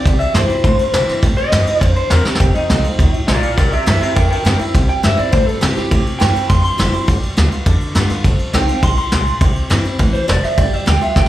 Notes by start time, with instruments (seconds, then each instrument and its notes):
Already playing: clean electric guitar D5
0.05 upright bass C2, steel-string acoustic guitar C3, kick, ride
0.19 clean electric guitar E5, muted upright bass stroke, ride
0.34 upright bass G2, steel-string acoustic guitar E3 A#3 C4 E4, clean electric guitar C5, snare, ride
0.49 steel-string acoustic guitar C4 E4, muted upright bass stroke, ride
0.64 steel-string acoustic guitar G2, upright bass A2, kick, ride
0.78 muted upright bass stroke, ride
0.93 upright bass C3, steel-string acoustic guitar E3 A#3 C4 E4, snare, ride
1.09 muted upright bass stroke, snare, ride
1.23 upright bass A2, steel-string acoustic guitar C3, kick, ride
1.37 clean electric guitar D#5, muted upright bass stroke, ride
1.52 upright bass G2, steel-string acoustic guitar E3 A#3 C4 E4, snare, ride
1.67 steel-string acoustic guitar C4 E4, muted upright bass stroke, ride
1.81 upright bass F2, steel-string acoustic guitar G2, kick, ride
1.96 clean electric guitar C5, muted upright bass stroke, ride
2.10 upright bass E2, steel-string acoustic guitar E3 A#3 C4 E4, clean electric guitar A#4, snare, ride
2.25 steel-string acoustic guitar C4 E4, clean electric guitar G4, muted upright bass stroke, snare
2.35 snare
2.39 upright bass F1, steel-string acoustic guitar F2, clean electric guitar G4, kick, ride
2.54 clean electric guitar D#4, muted upright bass stroke, ride
2.70 upright bass C2, steel-string acoustic guitar D#3 A3 C4 F4, snare, ride
2.84 steel-string acoustic guitar C4 F4, muted upright bass stroke, ride
2.99 upright bass D2, steel-string acoustic guitar A2, kick, ride
3.14 muted upright bass stroke, ride
3.27 upright bass A#1, steel-string acoustic guitar A#2, clean electric guitar F4 D5, snare, ride
3.41 clean electric guitar F4 D5, muted upright bass stroke, ride
3.57 upright bass C2, steel-string acoustic guitar C3, clean electric guitar A#4 D5, kick, ride
3.72 clean electric guitar G4 E5, muted upright bass stroke, ride
3.86 upright bass G2, steel-string acoustic guitar E3 A#3 C4 E4, clean electric guitar G4 E5, snare, ride
4.01 steel-string acoustic guitar C4 E4, clean electric guitar G4 E5, muted upright bass stroke, ride
4.15 upright bass F2, steel-string acoustic guitar G2, clean electric guitar A#4 G5, kick, ride
4.30 clean electric guitar A#4 G5, muted upright bass stroke, ride
4.45 upright bass G2, steel-string acoustic guitar E3 A#3 C4 E4, clean electric guitar A#4 G5, snare, ride
4.59 steel-string acoustic guitar C4 E4, clean electric guitar E5, muted upright bass stroke, ride
4.74 upright bass C2, steel-string acoustic guitar C3, kick, ride
4.89 clean electric guitar G5, muted upright bass stroke, ride
5.03 upright bass G2, steel-string acoustic guitar E3 A#3 C4 E4, clean electric guitar E5, snare, ride
5.17 steel-string acoustic guitar C4 E4, clean electric guitar D5, muted upright bass stroke, ride
5.32 steel-string acoustic guitar G2, upright bass A2, clean electric guitar C5, kick, ride
5.46 clean electric guitar A4, muted upright bass stroke, ride
5.61 upright bass C3, steel-string acoustic guitar E3 A#3 C4 E4, clean electric guitar G4, snare, ride
5.75 steel-string acoustic guitar C4 E4, clean electric guitar G4, muted upright bass stroke, snare, ride
5.91 upright bass A2, steel-string acoustic guitar C3, kick, ride
6.06 muted upright bass stroke, ride
6.19 upright bass G2, steel-string acoustic guitar E3 A#3 C4 E4, clean electric guitar G5, snare, ride
6.35 steel-string acoustic guitar C4 E4, muted upright bass stroke, ride
6.49 upright bass F2, steel-string acoustic guitar G2, clean electric guitar C6, kick, ride
6.63 clean electric guitar C6, muted upright bass stroke, ride
6.78 upright bass F#1, steel-string acoustic guitar E3 A#3 C4 E4, snare, ride
6.94 steel-string acoustic guitar C4 E4, muted upright bass stroke, ride
7.08 upright bass G1, steel-string acoustic guitar G3, kick, ride
7.22 muted upright bass stroke, ride
7.37 upright bass D2, steel-string acoustic guitar G3 B3 F4, snare, ride
7.52 steel-string acoustic guitar B3 F4, muted upright bass stroke, ride
7.66 upright bass E2, steel-string acoustic guitar D3, kick, ride
7.80 muted upright bass stroke, ride
7.95 upright bass G2, steel-string acoustic guitar G3 B3 F4, snare, ride
8.10 steel-string acoustic guitar B3 F4, muted upright bass stroke, snare, ride
8.24 upright bass F1, steel-string acoustic guitar F2, kick, ride
8.39 ride
8.53 upright bass C2, steel-string acoustic guitar D#3 A3 C4 F4, clean electric guitar G5, snare, ride
8.68 steel-string acoustic guitar C4 F4, muted upright bass stroke, ride
8.83 upright bass A#1, steel-string acoustic guitar A2, clean electric guitar C6, kick, ride
8.97 clean electric guitar C6, muted upright bass stroke, ride
9.12 upright bass C2, steel-string acoustic guitar A#2, snare, ride
9.27 muted upright bass stroke, ride
9.41 upright bass C2, steel-string acoustic guitar C3, kick, ride
9.56 muted upright bass stroke, ride
9.70 upright bass G2, steel-string acoustic guitar E3 A#3 C4 E4, snare, ride
9.84 steel-string acoustic guitar C4 E4, muted upright bass stroke, ride
9.99 upright bass A2, steel-string acoustic guitar E3, kick, ride
10.13 clean electric guitar C5, muted upright bass stroke, ride
10.28 upright bass F1, steel-string acoustic guitar F3, clean electric guitar D5, snare, ride
10.43 clean electric guitar E5, muted upright bass stroke, snare, ride
10.58 upright bass G1, steel-string acoustic guitar G3, clean electric guitar D5, kick, ride
10.72 clean electric guitar E5, muted upright bass stroke, ride
10.86 upright bass D2, steel-string acoustic guitar G3 B3 F4, clean electric guitar G5, snare, ride
11.01 steel-string acoustic guitar B3 F4, clean electric guitar E5, ride
11.16 upright bass C2, steel-string acoustic guitar A2, clean electric guitar G5, kick, snare